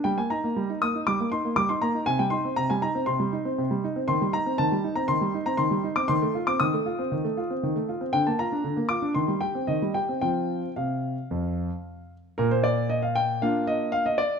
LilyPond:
<<
  \new Staff \with { instrumentName = "Grand piano" } { \time 4/4 \key c \minor \tempo 4 = 118 g''16 aes''16 bes''4 ees'''8 d'''8 c'''8 d'''16 c'''16 bes''8 | aes''16 g''16 c'''8 bes''16 aes''16 bes''8 c'''4. r8 | \key bes \major c'''8 bes''8 a''8. bes''16 c'''8. bes''16 c'''8. d'''16 | c'''8. d'''16 ees'''2. |
g''16 a''16 bes''4 d'''8 c'''8 g''8 ees''8 g''8 | g''4 f''2~ f''8 r8 | bes'16 c''16 d''8 ees''16 f''16 g''8 f''8 ees''8 f''16 ees''16 d''8 | }
  \new Staff \with { instrumentName = "Grand piano" } { \time 4/4 \key c \minor g16 bes16 ees'16 bes16 g16 ees'16 bes16 ees'16 g16 bes16 ees'16 bes16 g16 ees'16 bes16 ees'16 | c16 g16 ees'16 c'16 c16 g16 ees'16 c'16 c16 g16 ees'16 c'16 c16 g16 ees'16 c'16 | \key bes \major ees16 g16 ees'16 c'16 ees16 g16 ees'16 c'16 ees16 g16 ees'16 c'16 ees16 g16 ees'16 c'16 | ees16 a16 f'16 c'16 ees16 a16 f'16 c'16 ees16 a16 f'16 c'16 ees16 a16 f'16 c'16 |
d16 bes16 f'16 d'16 d16 bes16 f'16 d'16 ees16 g16 g'16 c'16 ees16 g16 g'16 c'16 | <f c' f'>4 c4 f,4 r4 | bes,2 <bes d' f'>2 | }
>>